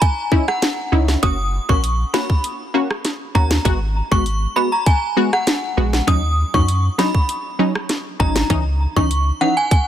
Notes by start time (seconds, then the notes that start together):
0.01 G#5, kick, closed hi-hat
0.32 C#4 D#4 E4, kick
0.48 F#5, cross-stick
0.62 snare, closed hi-hat
0.92 C#2 C#4 D#4 E4
1.08 snare
1.23 F#1 A#3 C#4 F#4 D#6, kick, closed hi-hat
1.69 A#1 A#3 C#4 F#4 C#6, kick
1.84 closed hi-hat
2.14 A#3 C#4 F#4 B5, snare
2.30 kick
2.44 closed hi-hat
2.74 A#3 C#4 F#4
2.91 cross-stick
3.05 snare, closed hi-hat
3.35 D#2 A#3 C#4 F#4 A#5, kick
3.51 snare
3.65 G#1 G#3 B3 F#4, kick, closed hi-hat
4.11 G#1 G#3 B3 F#4 C#6, kick
4.26 closed hi-hat
4.56 G#3 B3 F#4 B5
4.72 A#5
4.86 G#5, kick, closed hi-hat
5.17 G#3 B3 F#4
5.33 F#5, cross-stick
5.47 snare, closed hi-hat
5.77 A#1 G#3 B3 F#4
5.93 snare
6.07 D#2 F#3 C#4 D#4 D#6, kick, closed hi-hat
6.54 F#2 F#3 C#4 D#4 C#6, kick
6.68 closed hi-hat
6.98 F#3 C#4 D#4 B5, snare
7.15 kick
7.29 closed hi-hat
7.59 F#3 C#4 D#4
7.75 cross-stick
7.89 snare, closed hi-hat
8.20 G#1 F#3 C#4 D#4 A#5, kick
8.36 snare
8.50 C#2 E3 C#4 D#4, kick, closed hi-hat
8.96 C#2 E3 C#4 D#4 C#6, kick
9.11 closed hi-hat
9.41 E3 C#4 D#4 F#5
9.57 G#5
9.71 G#5, kick, closed hi-hat